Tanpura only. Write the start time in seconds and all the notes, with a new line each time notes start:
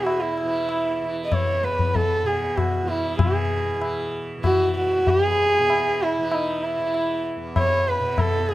Already playing: E2 B2 E3
0.43 E3
1.02 E3
1.63 E2
2.23 B2
2.83 E3
3.19 B2
3.78 E3
4.38 E3
4.98 E2
5.59 B2
6.19 E3
6.78 E3
7.37 E2
8.00 B2